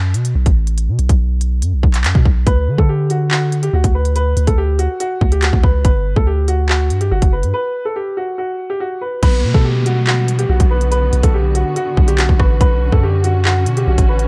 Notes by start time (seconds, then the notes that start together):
Already playing: F#2
0.14 B2, closed hi-hat
0.25 closed hi-hat
0.35 B1
0.46 A1, kick, closed hi-hat
0.67 closed hi-hat
0.78 closed hi-hat
0.88 B2
0.99 B1, closed hi-hat
1.09 B1, kick, closed hi-hat
1.41 closed hi-hat
1.62 F#2, closed hi-hat
1.73 B1
1.83 B1, kick
1.94 clap, closed hi-hat
2.04 F#2, clap, closed hi-hat
2.15 B2, kick
2.25 B1, kick
2.47 D2 B4, kick, closed hi-hat
2.68 D3
2.78 D3 A4, kick
2.89 G4
3.10 F#4, closed hi-hat
3.31 F#4, clap
3.52 closed hi-hat
3.63 G4, closed hi-hat
3.73 D2 F#4
3.84 D2, kick, closed hi-hat
3.95 B4
4.05 closed hi-hat
4.16 B4, closed hi-hat
4.37 D2, closed hi-hat
4.47 D2 A4, kick, closed hi-hat
4.58 G4
4.79 F#4, closed hi-hat
5.00 F#4, closed hi-hat
5.21 D2, kick
5.32 G4, closed hi-hat
5.42 F#4, clap, closed hi-hat
5.53 D2, kick
5.63 C#2 B4, kick
5.84 G1 B4, kick, closed hi-hat
6.16 D2 A4, kick
6.27 G4
6.48 F#4, closed hi-hat
6.69 F#4, clap
6.90 G2, closed hi-hat
7.01 G4, closed hi-hat
7.11 G1 F#4
7.22 F#1, kick, closed hi-hat
7.33 B4
7.43 G2, closed hi-hat
7.54 B4
7.85 A4
7.96 G4
8.17 F#4
8.38 F#4
8.70 G4
8.80 F#4
9.01 B4
9.23 B1 D3 B3 F#4 B4, kick, closed hi-hat, crash, downlifter
9.44 B2
9.54 B2 A4, kick
9.65 G4
9.86 F#4, closed hi-hat
10.07 F#4, clap
10.28 closed hi-hat
10.39 G4, closed hi-hat
10.49 B1 F#4
10.60 B1, kick, closed hi-hat
10.71 B4
10.81 closed hi-hat
10.91 B4, closed hi-hat
11.13 B1, closed hi-hat
11.23 B1 A4, kick, closed hi-hat
11.34 G4
11.55 F#4, closed hi-hat
11.76 F#4, closed hi-hat
11.97 B1, kick
12.08 G4, closed hi-hat
12.18 F#4, clap, closed hi-hat
12.29 B1, kick
12.39 A1 B4, kick, cross-stick
12.61 B1 C#4 B4, kick, closed hi-hat
12.92 F#2 A4, kick
13.03 G4
13.24 F#4, closed hi-hat
13.45 F#4, clap
13.66 B2, closed hi-hat
13.77 G4, closed hi-hat
13.88 B1 F#4
13.98 A1, kick, closed hi-hat
14.09 B4
14.19 closed hi-hat